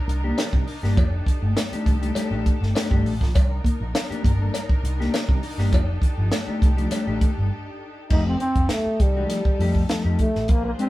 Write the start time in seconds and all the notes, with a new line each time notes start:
Already playing: D4 D#4 A#4
0.08 C2, muted clean electric guitar stroke, closed hi-hat
0.24 D#3 A#3 D4 G4
0.38 snare, closed hi-hat, cowbell
0.53 C3 G3, kick
0.66 muted clean electric guitar stroke, open hi-hat
0.82 G1 D#3 G3 A#3 D4 G4, snare
0.96 F1 F3 G4 A4, kick, closed hi-hat, cowbell
1.26 muted clean electric guitar stroke, kick, closed hi-hat
1.42 G1 A3
1.56 A3, snare, closed hi-hat, cowbell
1.72 D#3 A3 D4 G4, muted picked electric bass stroke, muted clean electric guitar stroke, closed hi-hat
1.86 C2, kick, closed hi-hat
2.02 D#3 G3 A3 D4 G4, closed hi-hat
2.15 D#3 G3 A3 D4 G4, snare, closed hi-hat, cowbell
2.31 A1 D#3 A3 D4 G4, muted clean electric guitar stroke
2.46 kick, closed hi-hat
2.61 G1 A3, snare
2.75 D#3 A3 D4 G4, snare, closed hi-hat, cowbell
2.91 G1 D#3 G3 A3 D4 G4, kick
3.05 A1, muted clean electric guitar stroke, open hi-hat
3.21 A#1 F3, kick, snare
3.35 C2 G3 D4 D#4 A#4, kick, closed hi-hat, cowbell
3.64 A#3, kick, closed hi-hat
3.80 A#1, muted clean electric guitar stroke
3.94 muted clean electric guitar stroke, snare, closed hi-hat, cowbell
4.10 D#3 A#3 D4 G4, muted picked electric bass stroke, closed hi-hat
4.23 G1 A#3, kick, closed hi-hat
4.39 D#3 G3 A#3 D4 A4
4.53 G3, snare, closed hi-hat, cowbell
4.69 kick
4.83 C2, muted clean electric guitar stroke, closed hi-hat
4.99 D#3 A#3 D4 G4, snare
5.14 snare, closed hi-hat, cowbell
5.29 C3 G3, kick
5.43 muted clean electric guitar stroke, open hi-hat
5.58 G1 D#3 G3 A#3 D4 G4, snare
5.72 F1 F3 G4 A4, kick, closed hi-hat, cowbell
6.02 muted clean electric guitar stroke, kick, closed hi-hat
6.18 G1 F3
6.32 A3, snare, closed hi-hat, cowbell
6.47 D#3 A3 D4 G4, muted picked electric bass stroke, muted clean electric guitar stroke
6.62 C2, kick, closed hi-hat
6.77 D#3 F3 A3 D4 G4, closed hi-hat
6.91 D#3 G3 A3 D4 G4, snare, closed hi-hat, cowbell
7.07 A1 D#3 A3 D4 G4
7.21 kick, closed hi-hat
7.37 G1 G3
8.09 F1 F3 A3 D#4 G4 A4, kick, crash
8.26 C4
8.40 C4, closed hi-hat
8.55 F1, kick, closed hi-hat
8.69 A3, snare, closed hi-hat
8.86 muted picked electric bass stroke
9.00 C2 G3, kick, closed hi-hat
9.17 F3 A3 D#4 G4
9.30 snare, closed hi-hat
9.45 kick
9.59 F2 F3 A3 D#4 G4, open hi-hat
9.75 kick
9.89 F3 A3 D#4 A4, snare, closed hi-hat
10.05 F2 F3 A3 D#4 G4
10.19 A3, kick, closed hi-hat
10.35 A1, snare
10.48 A#1 A#3 D4 G4 G#4 C5, kick, closed hi-hat
10.65 A#3
10.79 G#3 C4 D4 G4, closed hi-hat